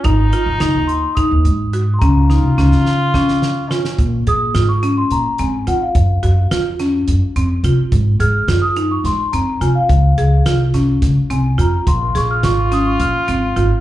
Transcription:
<<
  \new Staff \with { instrumentName = "Celesta" } { \time 7/8 \key des \major \tempo 4 = 107 bes''4. c'''8 ees'''4~ ees'''16. c'''32 | bes''4. c'''8 des'''4~ des'''32 r16. | r8 ees'''8. des'''8 c'''16 bes''8 aes''8 ges''16 f''16~ | f''4~ f''16 r2 r16 |
r8 f'''8. ees'''8 des'''16 c'''8 bes''8 aes''16 f''16~ | f''4~ f''16 r4 r16 aes''8 bes''8 | c'''8 des'''16 f'''16 des'''8 ees'''16 des'''16 f'''4. | }
  \new Staff \with { instrumentName = "Marimba" } { \time 7/8 \key des \major ees'8 f'8 ees'4 ees'4 ges'8 | des'8 ees'8 des'4 des'4 f'8 | r8 aes'8 f'8 des'4 c'8 f'8 | r8 ges'8 f'8 des'4 c'8 f'8 |
r8 aes'8 f'8 ees'4 c'8 f'8 | r8 aes'8 f'8 des'4 c'8 f'8 | r8 aes'8 f'8 des'4 c'8 f'8 | }
  \new Staff \with { instrumentName = "Trombone" } { \time 7/8 \key des \major ees'2. r8 | f'2. des'8 | r2. r8 | r2. r8 |
r2. r8 | r2. r8 | f'2.~ f'8 | }
  \new Staff \with { instrumentName = "Upright bass" } { \clef bass \time 7/8 \key des \major aes,,8 r16 aes,,16 ges,,16 ees,8 r8 ees,16 aes,4 | des,8. c,16 des,16 des2 r16 | bes,8 bes,8 aes,4 bes,16 r16 aes,8 ees16 r16 | ges,8 ges,8 f,4 ges,16 r16 f,8 c16 r16 |
aes,8 aes,8 ges,4 aes,16 r16 ges,8 c16 r16 | des,8 des,8 c,4 des,16 r16 c,8 f,16 r16 | bes,,8 bes,,8 aes,,4 bes,,16 r16 aes,,8 aes,,16 r16 | }
  \new DrumStaff \with { instrumentName = "Drums" } \drummode { \time 7/8 <hh bd>8 hh8 <hh sn>8 hh8 <hh bd>8 hh8 hh8 | <hh bd>8 sn8 sn16 sn16 sn8 <bd sn>16 sn16 sn8 sn16 sn16 | <hh bd>8 hh8 <hh sn>8 hh8 hh8 hh8 hh8 | <hh bd>8 hh8 <hh sn>8 <hh sn>8 hh8 hh8 hh8 |
<hh bd>8 hh8 <hh sn>8 hh8 <hh sn>8 hh8 hh8 | <hh bd>8 hh8 <hh sn>8 <hh bd sn>8 <hh bd sn>8 hh8 hh8 | <hh bd>8 <hh sn>8 <hh sn>8 <hh sn>8 hh8 hh8 hh8 | }
>>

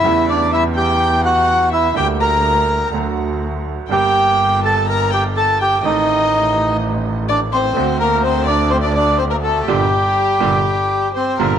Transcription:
<<
  \new Staff \with { instrumentName = "Violin" } { \time 4/4 \key g \minor \tempo 4 = 124 e''8 d''8 e''8 g''4 fis''4 e''8 | g''8 bes''4. r2 | g''4. a''8 bes''8 g''8 a''8 g''8 | ees''2 r4 d''8 c''8~ |
c''8 bes'8 c''8 d''8 c''16 d''16 d''8 c''16 bes'16 a'8 | g'2. c''8 bes'8 | }
  \new Staff \with { instrumentName = "Bandoneon" } { \time 4/4 \key g \minor <e' e''>8 <d' d''>8 <e' e''>8 <g' g''>4 <fis' fis''>4 <e' e''>8 | <g' g''>8 <bes' bes''>4. r2 | <g' g''>4. <a' a''>8 <bes' bes''>8 <g' g''>8 <a' a''>8 <g' g''>8 | <ees' ees''>2 r4 <d' d''>8 <c' c''>8~ |
<c' c''>8 <bes bes'>8 <c' c''>8 <d' d''>8 <c' c''>16 <d' d''>16 <d' d''>8 <c' c''>16 <bes bes'>16 <a a'>8 | <g g'>2. <c' c''>8 <bes bes'>8 | }
  \new Staff \with { instrumentName = "Grand piano" } { \clef bass \time 4/4 \key g \minor <e, cis e g a e'>1 | <d, d g bes g'>2 <d, d fis a fis'>2 | <g,, g, d g bes g'>1 | <a,, a, ees a c' a'>1 |
<d, d a c' fis'>1 | <bes, d g>8 r4 <bes, d g>8 r4. <bes, d g>8 | }
  \new Staff \with { instrumentName = "Double bass" } { \clef bass \time 4/4 \key g \minor e,1 | d,2 d,2 | g,,1 | a,,1 |
d,1 | g,,8 r4 g,,8 r4. g,,8 | }
>>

